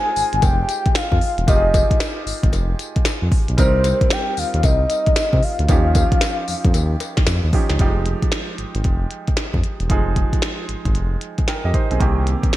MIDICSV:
0, 0, Header, 1, 5, 480
1, 0, Start_track
1, 0, Key_signature, -4, "minor"
1, 0, Tempo, 526316
1, 1349, Time_signature, 4, 2, 24, 8
1, 11463, End_track
2, 0, Start_track
2, 0, Title_t, "Soft synth lead"
2, 0, Program_c, 0, 80
2, 0, Note_on_c, 0, 80, 123
2, 397, Note_on_c, 0, 79, 114
2, 410, Note_off_c, 0, 80, 0
2, 880, Note_on_c, 0, 77, 114
2, 894, Note_off_c, 0, 79, 0
2, 1354, Note_off_c, 0, 77, 0
2, 1358, Note_on_c, 0, 75, 102
2, 2037, Note_off_c, 0, 75, 0
2, 3278, Note_on_c, 0, 72, 106
2, 3759, Note_on_c, 0, 79, 108
2, 3773, Note_off_c, 0, 72, 0
2, 4000, Note_on_c, 0, 77, 103
2, 4014, Note_off_c, 0, 79, 0
2, 4234, Note_on_c, 0, 75, 115
2, 4248, Note_off_c, 0, 77, 0
2, 4958, Note_on_c, 0, 77, 113
2, 4972, Note_off_c, 0, 75, 0
2, 6633, Note_off_c, 0, 77, 0
2, 11463, End_track
3, 0, Start_track
3, 0, Title_t, "Grand piano"
3, 0, Program_c, 1, 0
3, 0, Control_c, 1, 64, 127
3, 0, Note_on_c, 1, 56, 64
3, 0, Note_on_c, 1, 63, 59
3, 0, Note_on_c, 1, 65, 59
3, 0, Note_on_c, 1, 68, 70
3, 1310, Note_off_c, 1, 56, 0
3, 1314, Note_off_c, 1, 63, 0
3, 1317, Note_off_c, 1, 65, 0
3, 1343, Note_on_c, 1, 67, 64
3, 1350, Note_off_c, 1, 68, 0
3, 1350, Note_on_c, 1, 63, 59
3, 1356, Note_off_c, 1, 67, 0
3, 1357, Note_on_c, 1, 65, 64
3, 1365, Note_on_c, 1, 67, 57
3, 1424, Note_on_c, 1, 68, 66
3, 1430, Note_off_c, 1, 67, 0
3, 3233, Note_off_c, 1, 63, 0
3, 3237, Note_off_c, 1, 65, 0
3, 3260, Note_on_c, 1, 55, 71
3, 3268, Note_on_c, 1, 60, 61
3, 3270, Note_off_c, 1, 68, 0
3, 3274, Note_on_c, 1, 63, 57
3, 3279, Control_c, 1, 64, 0
3, 3281, Note_on_c, 1, 70, 72
3, 3448, Control_c, 1, 64, 127
3, 5148, Note_off_c, 1, 55, 0
3, 5152, Note_off_c, 1, 60, 0
3, 5155, Note_off_c, 1, 63, 0
3, 5158, Note_off_c, 1, 70, 0
3, 5184, Note_on_c, 1, 53, 63
3, 5192, Note_on_c, 1, 61, 57
3, 5198, Note_on_c, 1, 63, 60
3, 5202, Control_c, 1, 64, 0
3, 5207, Note_on_c, 1, 67, 71
3, 5356, Control_c, 1, 64, 127
3, 6833, Note_off_c, 1, 53, 0
3, 6837, Note_off_c, 1, 61, 0
3, 6840, Note_off_c, 1, 63, 0
3, 6844, Note_off_c, 1, 67, 0
3, 6870, Note_on_c, 1, 53, 58
3, 6874, Note_on_c, 1, 61, 52
3, 6877, Note_on_c, 1, 63, 51
3, 6881, Note_on_c, 1, 67, 67
3, 7091, Note_off_c, 1, 53, 0
3, 7105, Note_on_c, 1, 53, 74
3, 7106, Note_off_c, 1, 63, 0
3, 7111, Note_off_c, 1, 61, 0
3, 7113, Note_on_c, 1, 55, 50
3, 7114, Note_off_c, 1, 67, 0
3, 7120, Note_on_c, 1, 63, 67
3, 7122, Control_c, 1, 64, 0
3, 7128, Note_on_c, 1, 67, 76
3, 7170, Note_on_c, 1, 56, 65
3, 7184, Note_off_c, 1, 55, 0
3, 7291, Control_c, 1, 64, 127
3, 8990, Note_off_c, 1, 53, 0
3, 8998, Note_off_c, 1, 63, 0
3, 9002, Note_off_c, 1, 67, 0
3, 9016, Note_off_c, 1, 56, 0
3, 9023, Note_on_c, 1, 53, 67
3, 9030, Note_on_c, 1, 56, 67
3, 9036, Note_on_c, 1, 63, 68
3, 9043, Note_on_c, 1, 68, 78
3, 10444, Note_off_c, 1, 63, 0
3, 10447, Note_off_c, 1, 68, 0
3, 10470, Note_on_c, 1, 79, 63
3, 10477, Note_on_c, 1, 70, 53
3, 10614, Note_off_c, 1, 79, 0
3, 10618, Note_off_c, 1, 70, 0
3, 10624, Note_on_c, 1, 75, 69
3, 10629, Note_on_c, 1, 67, 57
3, 10706, Note_off_c, 1, 75, 0
3, 10709, Note_off_c, 1, 67, 0
3, 10711, Note_on_c, 1, 72, 65
3, 10717, Note_on_c, 1, 63, 55
3, 10855, Note_off_c, 1, 72, 0
3, 10858, Note_off_c, 1, 63, 0
3, 10865, Note_on_c, 1, 68, 63
3, 10871, Note_on_c, 1, 60, 55
3, 10909, Note_off_c, 1, 53, 0
3, 10913, Note_off_c, 1, 56, 0
3, 10939, Note_off_c, 1, 60, 0
3, 10940, Note_on_c, 1, 51, 71
3, 10948, Note_on_c, 1, 58, 65
3, 10953, Note_on_c, 1, 60, 66
3, 10960, Control_c, 1, 64, 0
3, 10961, Note_on_c, 1, 67, 74
3, 11091, Note_off_c, 1, 68, 0
3, 11094, Control_c, 1, 64, 127
3, 11463, Note_off_c, 1, 51, 0
3, 11463, Note_off_c, 1, 58, 0
3, 11463, Note_off_c, 1, 60, 0
3, 11463, Note_off_c, 1, 67, 0
3, 11463, End_track
4, 0, Start_track
4, 0, Title_t, "Analog synth bass"
4, 0, Program_c, 2, 38
4, 149, Note_on_c, 2, 32, 53
4, 210, Note_off_c, 2, 32, 0
4, 300, Note_on_c, 2, 32, 88
4, 372, Note_off_c, 2, 32, 0
4, 389, Note_on_c, 2, 29, 100
4, 584, Note_off_c, 2, 29, 0
4, 1019, Note_on_c, 2, 41, 102
4, 1091, Note_off_c, 2, 41, 0
4, 1259, Note_on_c, 2, 28, 96
4, 1331, Note_off_c, 2, 28, 0
4, 1347, Note_on_c, 2, 29, 107
4, 1667, Note_off_c, 2, 29, 0
4, 2065, Note_on_c, 2, 32, 53
4, 2126, Note_off_c, 2, 32, 0
4, 2220, Note_on_c, 2, 32, 99
4, 2292, Note_off_c, 2, 32, 0
4, 2305, Note_on_c, 2, 29, 104
4, 2502, Note_off_c, 2, 29, 0
4, 2938, Note_on_c, 2, 41, 96
4, 3011, Note_off_c, 2, 41, 0
4, 3180, Note_on_c, 2, 35, 89
4, 3252, Note_off_c, 2, 35, 0
4, 3266, Note_on_c, 2, 36, 107
4, 3587, Note_off_c, 2, 36, 0
4, 3990, Note_on_c, 2, 39, 55
4, 4050, Note_off_c, 2, 39, 0
4, 4141, Note_on_c, 2, 39, 108
4, 4212, Note_off_c, 2, 39, 0
4, 4229, Note_on_c, 2, 36, 106
4, 4424, Note_off_c, 2, 36, 0
4, 4861, Note_on_c, 2, 48, 101
4, 4933, Note_off_c, 2, 48, 0
4, 5100, Note_on_c, 2, 38, 94
4, 5172, Note_off_c, 2, 38, 0
4, 5188, Note_on_c, 2, 39, 115
4, 5507, Note_off_c, 2, 39, 0
4, 5912, Note_on_c, 2, 41, 55
4, 5972, Note_off_c, 2, 41, 0
4, 6061, Note_on_c, 2, 41, 98
4, 6132, Note_off_c, 2, 41, 0
4, 6152, Note_on_c, 2, 39, 97
4, 6346, Note_off_c, 2, 39, 0
4, 6631, Note_on_c, 2, 41, 91
4, 6754, Note_off_c, 2, 41, 0
4, 6784, Note_on_c, 2, 39, 91
4, 6854, Note_off_c, 2, 39, 0
4, 7023, Note_on_c, 2, 37, 99
4, 7094, Note_off_c, 2, 37, 0
4, 7109, Note_on_c, 2, 29, 101
4, 7428, Note_off_c, 2, 29, 0
4, 7830, Note_on_c, 2, 32, 49
4, 7890, Note_off_c, 2, 32, 0
4, 7982, Note_on_c, 2, 32, 97
4, 8053, Note_off_c, 2, 32, 0
4, 8069, Note_on_c, 2, 29, 94
4, 8264, Note_off_c, 2, 29, 0
4, 8699, Note_on_c, 2, 41, 96
4, 8771, Note_off_c, 2, 41, 0
4, 8942, Note_on_c, 2, 28, 86
4, 9013, Note_off_c, 2, 28, 0
4, 9028, Note_on_c, 2, 29, 110
4, 9347, Note_off_c, 2, 29, 0
4, 9748, Note_on_c, 2, 32, 51
4, 9809, Note_off_c, 2, 32, 0
4, 9899, Note_on_c, 2, 32, 95
4, 9971, Note_off_c, 2, 32, 0
4, 9989, Note_on_c, 2, 29, 100
4, 10184, Note_off_c, 2, 29, 0
4, 10619, Note_on_c, 2, 41, 87
4, 10691, Note_off_c, 2, 41, 0
4, 10861, Note_on_c, 2, 35, 86
4, 10932, Note_off_c, 2, 35, 0
4, 10948, Note_on_c, 2, 36, 105
4, 11267, Note_off_c, 2, 36, 0
4, 11463, End_track
5, 0, Start_track
5, 0, Title_t, "Drums"
5, 148, Note_on_c, 9, 46, 71
5, 148, Note_on_c, 9, 54, 65
5, 239, Note_off_c, 9, 46, 0
5, 240, Note_off_c, 9, 54, 0
5, 300, Note_on_c, 9, 42, 56
5, 385, Note_off_c, 9, 42, 0
5, 385, Note_on_c, 9, 42, 67
5, 386, Note_on_c, 9, 56, 80
5, 387, Note_on_c, 9, 54, 67
5, 388, Note_on_c, 9, 36, 99
5, 477, Note_off_c, 9, 42, 0
5, 478, Note_off_c, 9, 54, 0
5, 478, Note_off_c, 9, 56, 0
5, 480, Note_off_c, 9, 36, 0
5, 626, Note_on_c, 9, 54, 67
5, 627, Note_on_c, 9, 42, 74
5, 717, Note_off_c, 9, 54, 0
5, 718, Note_off_c, 9, 42, 0
5, 781, Note_on_c, 9, 42, 46
5, 783, Note_on_c, 9, 36, 94
5, 865, Note_on_c, 9, 56, 66
5, 867, Note_on_c, 9, 38, 111
5, 871, Note_off_c, 9, 42, 0
5, 871, Note_on_c, 9, 42, 75
5, 871, Note_on_c, 9, 54, 104
5, 875, Note_off_c, 9, 36, 0
5, 956, Note_off_c, 9, 56, 0
5, 958, Note_off_c, 9, 38, 0
5, 962, Note_off_c, 9, 42, 0
5, 962, Note_off_c, 9, 54, 0
5, 1020, Note_on_c, 9, 36, 90
5, 1107, Note_on_c, 9, 46, 71
5, 1111, Note_off_c, 9, 36, 0
5, 1198, Note_off_c, 9, 46, 0
5, 1259, Note_on_c, 9, 42, 48
5, 1348, Note_on_c, 9, 36, 117
5, 1349, Note_off_c, 9, 42, 0
5, 1349, Note_on_c, 9, 42, 89
5, 1349, Note_on_c, 9, 54, 75
5, 1349, Note_on_c, 9, 56, 69
5, 1439, Note_off_c, 9, 36, 0
5, 1440, Note_off_c, 9, 42, 0
5, 1440, Note_off_c, 9, 54, 0
5, 1440, Note_off_c, 9, 56, 0
5, 1586, Note_on_c, 9, 54, 72
5, 1587, Note_on_c, 9, 36, 90
5, 1589, Note_on_c, 9, 42, 71
5, 1590, Note_on_c, 9, 56, 81
5, 1677, Note_off_c, 9, 54, 0
5, 1679, Note_off_c, 9, 36, 0
5, 1680, Note_off_c, 9, 42, 0
5, 1681, Note_off_c, 9, 56, 0
5, 1739, Note_on_c, 9, 36, 94
5, 1742, Note_on_c, 9, 42, 55
5, 1827, Note_on_c, 9, 38, 122
5, 1827, Note_on_c, 9, 56, 73
5, 1828, Note_off_c, 9, 42, 0
5, 1828, Note_on_c, 9, 42, 81
5, 1829, Note_on_c, 9, 54, 94
5, 1831, Note_off_c, 9, 36, 0
5, 1918, Note_off_c, 9, 38, 0
5, 1918, Note_off_c, 9, 56, 0
5, 1919, Note_off_c, 9, 42, 0
5, 1921, Note_off_c, 9, 54, 0
5, 2069, Note_on_c, 9, 46, 74
5, 2069, Note_on_c, 9, 54, 68
5, 2160, Note_off_c, 9, 46, 0
5, 2161, Note_off_c, 9, 54, 0
5, 2219, Note_on_c, 9, 36, 96
5, 2221, Note_on_c, 9, 42, 60
5, 2305, Note_on_c, 9, 56, 78
5, 2309, Note_off_c, 9, 42, 0
5, 2309, Note_on_c, 9, 42, 64
5, 2310, Note_off_c, 9, 36, 0
5, 2310, Note_on_c, 9, 54, 69
5, 2396, Note_off_c, 9, 56, 0
5, 2400, Note_off_c, 9, 42, 0
5, 2401, Note_off_c, 9, 54, 0
5, 2547, Note_on_c, 9, 42, 71
5, 2547, Note_on_c, 9, 54, 63
5, 2638, Note_off_c, 9, 54, 0
5, 2639, Note_off_c, 9, 42, 0
5, 2699, Note_on_c, 9, 42, 50
5, 2702, Note_on_c, 9, 36, 92
5, 2782, Note_on_c, 9, 38, 127
5, 2786, Note_off_c, 9, 42, 0
5, 2786, Note_on_c, 9, 42, 81
5, 2786, Note_on_c, 9, 54, 98
5, 2786, Note_on_c, 9, 56, 67
5, 2793, Note_off_c, 9, 36, 0
5, 2873, Note_off_c, 9, 38, 0
5, 2877, Note_off_c, 9, 42, 0
5, 2877, Note_off_c, 9, 54, 0
5, 2877, Note_off_c, 9, 56, 0
5, 3024, Note_on_c, 9, 36, 101
5, 3026, Note_on_c, 9, 46, 71
5, 3115, Note_off_c, 9, 36, 0
5, 3117, Note_off_c, 9, 46, 0
5, 3177, Note_on_c, 9, 42, 50
5, 3265, Note_off_c, 9, 42, 0
5, 3265, Note_on_c, 9, 42, 89
5, 3265, Note_on_c, 9, 54, 71
5, 3267, Note_on_c, 9, 36, 112
5, 3270, Note_on_c, 9, 56, 75
5, 3356, Note_off_c, 9, 42, 0
5, 3356, Note_off_c, 9, 54, 0
5, 3358, Note_off_c, 9, 36, 0
5, 3362, Note_off_c, 9, 56, 0
5, 3502, Note_on_c, 9, 54, 68
5, 3505, Note_on_c, 9, 42, 76
5, 3509, Note_on_c, 9, 56, 82
5, 3593, Note_off_c, 9, 54, 0
5, 3596, Note_off_c, 9, 42, 0
5, 3600, Note_off_c, 9, 56, 0
5, 3659, Note_on_c, 9, 36, 96
5, 3659, Note_on_c, 9, 42, 51
5, 3743, Note_on_c, 9, 38, 124
5, 3745, Note_off_c, 9, 42, 0
5, 3745, Note_on_c, 9, 42, 79
5, 3746, Note_on_c, 9, 54, 91
5, 3748, Note_on_c, 9, 56, 74
5, 3750, Note_off_c, 9, 36, 0
5, 3835, Note_off_c, 9, 38, 0
5, 3836, Note_off_c, 9, 42, 0
5, 3837, Note_off_c, 9, 54, 0
5, 3839, Note_off_c, 9, 56, 0
5, 3987, Note_on_c, 9, 46, 69
5, 3987, Note_on_c, 9, 54, 68
5, 4078, Note_off_c, 9, 46, 0
5, 4078, Note_off_c, 9, 54, 0
5, 4140, Note_on_c, 9, 42, 58
5, 4225, Note_off_c, 9, 42, 0
5, 4225, Note_on_c, 9, 42, 76
5, 4227, Note_on_c, 9, 54, 71
5, 4227, Note_on_c, 9, 56, 82
5, 4229, Note_on_c, 9, 36, 99
5, 4317, Note_off_c, 9, 42, 0
5, 4318, Note_off_c, 9, 54, 0
5, 4318, Note_off_c, 9, 56, 0
5, 4320, Note_off_c, 9, 36, 0
5, 4465, Note_on_c, 9, 54, 69
5, 4466, Note_on_c, 9, 42, 74
5, 4557, Note_off_c, 9, 42, 0
5, 4557, Note_off_c, 9, 54, 0
5, 4619, Note_on_c, 9, 42, 48
5, 4623, Note_on_c, 9, 36, 91
5, 4707, Note_on_c, 9, 38, 119
5, 4707, Note_on_c, 9, 56, 64
5, 4710, Note_off_c, 9, 42, 0
5, 4710, Note_on_c, 9, 54, 101
5, 4711, Note_on_c, 9, 42, 81
5, 4714, Note_off_c, 9, 36, 0
5, 4798, Note_off_c, 9, 38, 0
5, 4798, Note_off_c, 9, 56, 0
5, 4802, Note_off_c, 9, 42, 0
5, 4802, Note_off_c, 9, 54, 0
5, 4861, Note_on_c, 9, 36, 93
5, 4948, Note_on_c, 9, 46, 68
5, 4952, Note_off_c, 9, 36, 0
5, 5039, Note_off_c, 9, 46, 0
5, 5100, Note_on_c, 9, 42, 52
5, 5185, Note_off_c, 9, 42, 0
5, 5185, Note_on_c, 9, 42, 81
5, 5185, Note_on_c, 9, 54, 75
5, 5188, Note_on_c, 9, 36, 114
5, 5192, Note_on_c, 9, 56, 77
5, 5276, Note_off_c, 9, 42, 0
5, 5276, Note_off_c, 9, 54, 0
5, 5279, Note_off_c, 9, 36, 0
5, 5283, Note_off_c, 9, 56, 0
5, 5424, Note_on_c, 9, 54, 74
5, 5427, Note_on_c, 9, 42, 68
5, 5429, Note_on_c, 9, 36, 95
5, 5434, Note_on_c, 9, 56, 83
5, 5515, Note_off_c, 9, 54, 0
5, 5518, Note_off_c, 9, 42, 0
5, 5520, Note_off_c, 9, 36, 0
5, 5525, Note_off_c, 9, 56, 0
5, 5580, Note_on_c, 9, 36, 93
5, 5580, Note_on_c, 9, 42, 58
5, 5664, Note_on_c, 9, 38, 121
5, 5666, Note_off_c, 9, 42, 0
5, 5666, Note_on_c, 9, 42, 82
5, 5667, Note_on_c, 9, 54, 93
5, 5671, Note_off_c, 9, 36, 0
5, 5671, Note_on_c, 9, 56, 73
5, 5756, Note_off_c, 9, 38, 0
5, 5757, Note_off_c, 9, 42, 0
5, 5758, Note_off_c, 9, 54, 0
5, 5762, Note_off_c, 9, 56, 0
5, 5908, Note_on_c, 9, 46, 70
5, 5908, Note_on_c, 9, 54, 70
5, 5999, Note_off_c, 9, 46, 0
5, 5999, Note_off_c, 9, 54, 0
5, 6061, Note_on_c, 9, 36, 95
5, 6061, Note_on_c, 9, 42, 58
5, 6148, Note_off_c, 9, 42, 0
5, 6148, Note_on_c, 9, 42, 66
5, 6148, Note_on_c, 9, 56, 78
5, 6149, Note_on_c, 9, 54, 73
5, 6152, Note_off_c, 9, 36, 0
5, 6239, Note_off_c, 9, 42, 0
5, 6239, Note_off_c, 9, 56, 0
5, 6240, Note_off_c, 9, 54, 0
5, 6386, Note_on_c, 9, 54, 65
5, 6387, Note_on_c, 9, 42, 70
5, 6389, Note_on_c, 9, 56, 78
5, 6477, Note_off_c, 9, 54, 0
5, 6478, Note_off_c, 9, 42, 0
5, 6481, Note_off_c, 9, 56, 0
5, 6539, Note_on_c, 9, 38, 63
5, 6541, Note_on_c, 9, 42, 43
5, 6544, Note_on_c, 9, 36, 92
5, 6627, Note_off_c, 9, 38, 0
5, 6627, Note_on_c, 9, 38, 115
5, 6628, Note_on_c, 9, 56, 71
5, 6630, Note_on_c, 9, 54, 96
5, 6631, Note_off_c, 9, 42, 0
5, 6631, Note_on_c, 9, 42, 82
5, 6635, Note_off_c, 9, 36, 0
5, 6718, Note_off_c, 9, 38, 0
5, 6719, Note_off_c, 9, 56, 0
5, 6722, Note_off_c, 9, 42, 0
5, 6722, Note_off_c, 9, 54, 0
5, 6867, Note_on_c, 9, 36, 102
5, 6867, Note_on_c, 9, 46, 68
5, 6958, Note_off_c, 9, 36, 0
5, 6958, Note_off_c, 9, 46, 0
5, 7018, Note_on_c, 9, 38, 65
5, 7018, Note_on_c, 9, 42, 47
5, 7107, Note_off_c, 9, 42, 0
5, 7107, Note_on_c, 9, 42, 84
5, 7109, Note_off_c, 9, 38, 0
5, 7109, Note_on_c, 9, 36, 101
5, 7198, Note_off_c, 9, 42, 0
5, 7200, Note_off_c, 9, 36, 0
5, 7347, Note_on_c, 9, 42, 71
5, 7439, Note_off_c, 9, 42, 0
5, 7500, Note_on_c, 9, 36, 86
5, 7501, Note_on_c, 9, 42, 51
5, 7585, Note_on_c, 9, 38, 114
5, 7587, Note_off_c, 9, 42, 0
5, 7587, Note_on_c, 9, 42, 72
5, 7591, Note_off_c, 9, 36, 0
5, 7676, Note_off_c, 9, 38, 0
5, 7678, Note_off_c, 9, 42, 0
5, 7828, Note_on_c, 9, 42, 61
5, 7920, Note_off_c, 9, 42, 0
5, 7978, Note_on_c, 9, 42, 57
5, 8065, Note_off_c, 9, 42, 0
5, 8065, Note_on_c, 9, 42, 60
5, 8068, Note_on_c, 9, 36, 89
5, 8156, Note_off_c, 9, 42, 0
5, 8160, Note_off_c, 9, 36, 0
5, 8305, Note_on_c, 9, 42, 63
5, 8396, Note_off_c, 9, 42, 0
5, 8459, Note_on_c, 9, 42, 42
5, 8463, Note_on_c, 9, 36, 86
5, 8544, Note_on_c, 9, 38, 116
5, 8548, Note_off_c, 9, 42, 0
5, 8548, Note_on_c, 9, 42, 70
5, 8554, Note_off_c, 9, 36, 0
5, 8635, Note_off_c, 9, 38, 0
5, 8639, Note_off_c, 9, 42, 0
5, 8700, Note_on_c, 9, 36, 86
5, 8788, Note_on_c, 9, 42, 64
5, 8791, Note_off_c, 9, 36, 0
5, 8879, Note_off_c, 9, 42, 0
5, 8938, Note_on_c, 9, 42, 47
5, 9027, Note_off_c, 9, 42, 0
5, 9027, Note_on_c, 9, 42, 83
5, 9028, Note_on_c, 9, 36, 105
5, 9118, Note_off_c, 9, 42, 0
5, 9119, Note_off_c, 9, 36, 0
5, 9268, Note_on_c, 9, 36, 78
5, 9268, Note_on_c, 9, 42, 65
5, 9359, Note_off_c, 9, 36, 0
5, 9359, Note_off_c, 9, 42, 0
5, 9420, Note_on_c, 9, 36, 83
5, 9422, Note_on_c, 9, 42, 51
5, 9504, Note_on_c, 9, 38, 119
5, 9506, Note_off_c, 9, 42, 0
5, 9506, Note_on_c, 9, 42, 73
5, 9511, Note_off_c, 9, 36, 0
5, 9596, Note_off_c, 9, 38, 0
5, 9597, Note_off_c, 9, 42, 0
5, 9748, Note_on_c, 9, 42, 68
5, 9839, Note_off_c, 9, 42, 0
5, 9899, Note_on_c, 9, 36, 86
5, 9899, Note_on_c, 9, 42, 56
5, 9986, Note_off_c, 9, 42, 0
5, 9986, Note_on_c, 9, 42, 64
5, 9990, Note_off_c, 9, 36, 0
5, 10077, Note_off_c, 9, 42, 0
5, 10226, Note_on_c, 9, 42, 64
5, 10317, Note_off_c, 9, 42, 0
5, 10379, Note_on_c, 9, 42, 43
5, 10383, Note_on_c, 9, 36, 84
5, 10467, Note_on_c, 9, 38, 111
5, 10470, Note_off_c, 9, 42, 0
5, 10472, Note_on_c, 9, 42, 77
5, 10474, Note_off_c, 9, 36, 0
5, 10559, Note_off_c, 9, 38, 0
5, 10563, Note_off_c, 9, 42, 0
5, 10706, Note_on_c, 9, 36, 91
5, 10708, Note_on_c, 9, 42, 64
5, 10797, Note_off_c, 9, 36, 0
5, 10799, Note_off_c, 9, 42, 0
5, 10861, Note_on_c, 9, 42, 44
5, 10948, Note_on_c, 9, 36, 101
5, 10949, Note_off_c, 9, 42, 0
5, 10949, Note_on_c, 9, 42, 77
5, 11039, Note_off_c, 9, 36, 0
5, 11040, Note_off_c, 9, 42, 0
5, 11189, Note_on_c, 9, 42, 65
5, 11281, Note_off_c, 9, 42, 0
5, 11339, Note_on_c, 9, 36, 87
5, 11341, Note_on_c, 9, 42, 49
5, 11427, Note_on_c, 9, 38, 114
5, 11428, Note_off_c, 9, 42, 0
5, 11428, Note_on_c, 9, 42, 73
5, 11430, Note_off_c, 9, 36, 0
5, 11463, Note_off_c, 9, 38, 0
5, 11463, Note_off_c, 9, 42, 0
5, 11463, End_track
0, 0, End_of_file